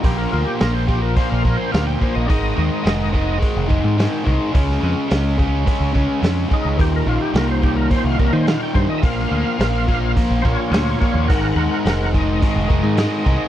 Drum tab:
HH |o---o---o---o---|o---o---o---o---|o---o---o---o---|o---o---o---o---|
SD |----o-------o---|----o-------o---|-o--o-------o---|----o-------o---|
BD |o-----o-o-o---o-|o-----o-o-o---o-|o-----o-o-o---o-|o-----o-o-o---o-|

HH |o---o---o---o---|o---o---o---o---|
SD |-o--o-------o---|----o-------o---|
BD |o-----o-o-o---o-|o-----o-o-o---o-|